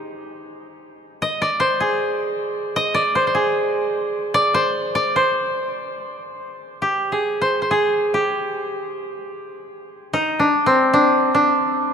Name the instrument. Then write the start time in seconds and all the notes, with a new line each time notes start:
koto
Already playing: D#4 G4
1.22 D#5
1.42 D5
1.60 C5
1.80 G#4
2.76 D#5
2.94 D5
3.15 C5
3.27 C5
3.35 G#4
4.34 D5
4.54 C5
4.95 D5
5.16 C5
6.82 G4
7.12 G#4
7.41 C5
7.62 C5
7.71 G#4
8.14 G4
10.13 D#4
10.39 D4
10.66 C4
10.93 D4
11.35 D4